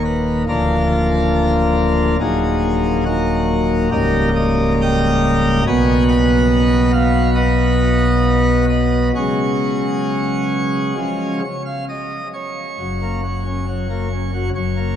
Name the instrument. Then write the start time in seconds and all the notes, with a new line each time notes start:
pipe organ
Already playing: D#1 D#2 D#3 A#3
0.05 B4
0.48 D1 D2 F3 A#3 D4 F4 A#4
2.20 D#1 D#2 F#3 A#3 D#4 G#4
3.05 A#3 D#4 F#4
3.91 C#1 C#2 G3 A#3 D#4 G4 A#4
4.35 D#5
4.82 D#5 G5 A#5
5.67 B1 B2 F#3 B3 F#4 G#5
6.08 B4 D#5 F#5
6.93 F5
7.35 F#4 B4 D#5
8.69 D#5
9.15 C#3 F#3 G#3 C#4 F#4 G#4 C#5
10.98 C#3 F3 G#3 C#4
11.44 C#5
11.66 F5
11.89 D#5
12.34 C#5
12.80 F#1 F#2
13.02 A#3
13.24 F#3
13.46 C#4
13.68 F#3
13.90 A#3
14.13 C#4
14.34 F#3
14.55 F#1 F#2 C#5
14.77 A#3